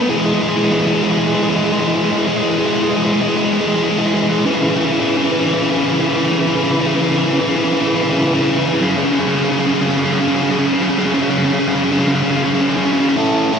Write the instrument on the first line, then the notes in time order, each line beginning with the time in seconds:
overdriven electric guitar
0.02 A3 B3
0.10 E3 G#3
0.17 E3 G#3
0.25 E3 G#3
0.33 E3 G#3
0.40 E3 G#3
0.48 E3 G#3
0.56 E3 G#3
0.63 E3 G#3
0.71 E3 G#3
0.79 E3 G#3
0.87 E3 G#3
0.94 E3 G#3
1.02 E3 G#3
1.10 E3 G#3
1.17 E3 G#3
1.26 E3 G#3
1.34 E3 G#3
1.42 E3 G#3
1.48 E3 G#3
1.56 E3 G#3
1.63 E3 G#3
1.73 E3 G#3
1.79 E3 G#3
1.87 E3 G#3
1.95 E3 G#3
2.03 E3 G#3
2.10 E3 G#3
2.17 E3 G#3
2.27 E3 G#3
2.35 E3 G#3
2.43 E3 G#3
2.51 E3 G#3
2.58 E3 G#3
2.66 E3 G#3
2.74 E3 G#3
2.81 E3 G#3
2.90 E3 G#3
2.97 E3 G#3
3.05 E3 G#3
3.13 E3 G#3
3.21 E3 G#3
3.28 E3 G#3
3.36 E3 G#3
3.44 E3 G#3
3.52 E3 G#3
3.59 E3 G#3
3.67 E3 G#3
3.75 E3 G#3
3.82 E3 G#3
3.90 E3 G#3
3.98 E3 G#3
4.05 E3 G#3
4.14 E3 G#3
4.22 E3 G#3
4.30 E3 G#3
4.38 E3 G#3
4.46 C#3 E3
4.54 C#3 E3
4.62 C#3 E3
4.69 C#3 E3
4.76 C#3 E3
4.84 C#3 E3
4.91 C#3 E3
5.00 C#3 E3
5.07 C#3 E3
5.16 C#3 E3
5.23 C#3 E3
5.31 C#3 E3
5.39 C#3 E3
5.46 C#3 E3
5.54 C#3 E3
5.62 C#3 E3
5.70 C#3 E3
5.77 C#3 E3
5.84 C#3 E3
5.93 C#3 E3
6.00 C#3 E3
6.07 C#3 E3
6.16 C#3 E3
6.24 C#3 E3
6.31 C#3 E3
6.38 C#3 E3
6.46 C#3 E3
6.55 C#3 E3
6.63 C#3 E3
6.71 C#3 E3
6.78 C#3 E3
6.86 C#3 E3
6.95 C#3 E3
7.02 C#3 E3
7.09 C#3 E3
7.17 C#3 E3
7.25 C#3 E3
7.32 C#3 E3
7.41 C#3 E3
7.48 C#3 E3
7.57 C#3 E3
7.64 C#3 E3
7.71 C#3 E3
7.80 C#3 E3
7.87 C#3 E3
7.95 C#3 E3
8.03 C#3 E3
8.10 C#3 E3
8.18 C#3 E3
8.26 C#3 E3
8.34 C#3 E3
8.42 C#3 E3
8.49 C#3 E3
8.59 C#3 E3
8.65 C#3 E3
8.73 C#3 E3
8.81 F#2 C#3
8.89 F#2 C#3
8.97 F#2 C#3
9.04 F#2 C#3
9.11 F#2 C#3
9.20 F#2 C#3
9.27 F#2 C#3
9.35 F#2 C#3
9.42 F#2 C#3
9.50 F#2 C#3
9.58 F#2 C#3
9.66 F#2 C#3
9.74 F#2 C#3
9.81 F#2 C#3
9.89 F#2 C#3
9.97 F#2 C#3
10.05 F#2 C#3
10.12 F#2 C#3
10.20 F#2 C#3
10.28 F#2 C#3
10.35 F#2 C#3
10.42 F#2 C#3
10.49 F#2 C#3
10.58 F#2 C#3
10.66 F#2 C#3
10.74 F#2 C#3
10.81 F#2 C#3
10.89 F#2 C#3
10.98 F#2 C#3
11.06 F#2 C#3
11.14 F#2 C#3
11.21 F#2 C#3
11.30 F#2 C#3
11.37 F#2 C#3
11.44 F#2 C#3
11.52 F#2 C#3
11.59 F#2 C#3
11.68 F#2 C#3
11.75 F#2 C#3
11.83 F#2 C#3
11.91 F#2 C#3
11.98 F#2 C#3
12.06 F#2 C#3
12.15 F#2 C#3
12.22 F#2 C#3
12.30 F#2 C#3
12.37 F#2 C#3
12.45 F#2 C#3
12.54 F#2 C#3
12.61 F#2 C#3
12.69 F#2 C#3
12.77 F#2 C#3
12.85 F#2 C#3
12.93 F#2 C#3
13.00 F#2 C#3
13.08 F#2 C#3
13.17 A3 C#4 E4 A4
13.53 A3 C#4 E4 A4